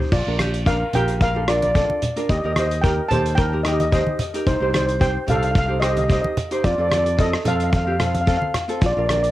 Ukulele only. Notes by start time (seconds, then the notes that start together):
Already playing: C5
0.26 D4 F4 A#4
0.39 D4 F4 G4
0.65 D4 F4 A#4
0.94 D4 F4 G4
1.34 D4 F4 A4
1.48 D4 F4 A#4
1.74 D4 F4 A4
2.16 D4 F4 A#4
2.43 D#4 G4 A#4
2.57 D#4 G4 C5
2.84 D#4 G4 A#4
3.11 D#4 G4 A4
3.52 D#4 G4 A#4
3.65 D#4 G4 A#4
3.92 D#4 G4 C5
4.34 D#4 G4 A#4
4.60 D#4 G4 C5
4.73 D#4 G4 D5
4.99 D#4 G4 C5
5.26 D#4 G4 D5
5.67 D#4 G4 C5
5.81 D#4 G4 C5
6.08 D#4 G4 C5
6.51 D#4 G4 C5
6.78 C4 F4 A4
6.90 C4 F4 A4
7.17 C4 F4 A4
7.44 C4 F4 A4
7.86 C4 F4 G4
7.99 C4 F4 A4
8.26 C4 F4 A4
8.68 C4 F4 A4
8.97 D4 F4 A#4
9.09 D4 F4 A#4